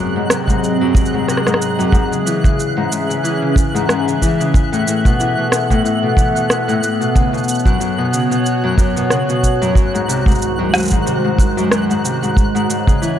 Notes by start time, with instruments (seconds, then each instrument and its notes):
Already playing: harp F#2, ambient pad C3 F#3 C4 G#4 D#5, synth texture F#6
0.16 harp G#2
0.30 harp C3, cross-stick, shaker
0.48 harp G#2, kick, shaker
0.64 shaker
0.81 harp F#2
0.95 harp F#2, kick, shaker
1.06 shaker
1.14 harp G#2
1.28 harp C3, cross-stick, shaker
1.37 cross-stick
1.46 harp G#2, cross-stick, shaker
1.54 cross-stick
1.62 shaker
1.79 harp F#2, shaker
1.92 harp G#2, ambient pad E3 C#4 E5, kick, shaker
2.12 harp C#3, shaker
2.26 harp E3, shaker
2.44 harp C#3, kick, shaker
2.60 shaker
2.77 harp G#2
2.91 harp G#2, shaker
3.09 harp C#3, shaker
3.24 harp E3, shaker
3.42 harp C#3
3.56 kick, shaker
3.75 harp G#2, shaker
3.89 harp G#2, cross-stick, shaker
4.07 harp C#3, shaker
4.22 harp E3, kick, shaker
4.40 harp C#3, shaker
4.54 ambient pad B3 A4, kick, shaker
4.72 harp A2, shaker
4.87 harp A2, shaker
5.05 harp B2, kick, shaker
5.19 harp E3, shaker
5.38 harp B2
5.52 cross-stick, shaker
5.70 harp A2, kick, shaker
5.84 harp A2, shaker
6.03 harp B2
6.17 harp E3, kick, shaker
6.35 harp B2, shaker
6.50 cross-stick, shaker
6.68 harp A2, shaker
6.82 harp A2, shaker
7.00 harp B2, shaker
7.15 harp C#3, ambient pad F#4 C#5, kick, shaker
7.33 harp B2, shaker
7.38 shaker
7.44 shaker
7.48 shaker
7.54 shaker
7.59 shaker
7.66 harp F#2, kick, shaker
7.80 harp F#2, shaker
7.98 harp B2
8.13 harp C#3, shaker
8.31 harp B2, shaker
8.46 shaker
8.64 harp F#2
8.78 harp F#2, kick, shaker
8.96 harp B2, shaker
9.10 harp C#3, cross-stick, shaker
9.29 harp B2, shaker
9.43 kick, shaker
9.62 harp F#2, shaker
9.75 ambient pad C2 D#3 G#3 C5, harp F#2, kick, shaker
9.94 harp G#2, shaker
10.08 harp C3, shaker
10.26 harp G#2, kick, shaker
10.31 shaker
10.35 shaker
10.38 shaker
10.42 shaker
10.59 harp F#2
10.73 harp F#2, cross-stick, shaker
10.77 shaker
10.80 shaker
10.83 shaker
10.85 shaker
10.88 shaker
10.90 harp G#2, kick, shaker
11.06 harp C3, shaker
11.24 harp G#2
11.38 kick, shaker
11.57 harp F#2, shaker
11.71 harp F#2, cross-stick, shaker
11.90 harp G#2, shaker
12.04 harp C3, shaker
12.22 harp G#2, shaker
12.36 ambient pad C#3 E4 C#5, kick, shaker
12.55 harp G#2, shaker
12.69 harp G#2, shaker
12.87 harp C#3, kick, shaker
13.02 harp E3, shaker